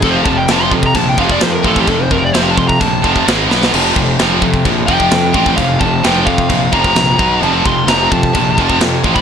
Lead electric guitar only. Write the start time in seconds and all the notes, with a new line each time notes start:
0.04 A4
0.11 C5
0.16 F5
0.25 A5
0.38 G5
0.51 A5
0.62 C6
0.86 A#5
0.96 A5
1.09 G5
1.19 F5
1.31 D5
1.42 C5
1.55 A#4
1.67 A4
1.80 G4
1.90 A4
2.02 C5
2.13 A#4
2.24 D5
2.35 C5
2.42 F5
2.51 A5
2.58 C6
2.68 A#5
2.81 A5
4.87 G5
5.56 F5
5.80 A5
6.05 G5
6.26 F5
6.73 A#5
7.43 A5
7.67 C6
7.88 A#5
8.12 A5
9.15 B5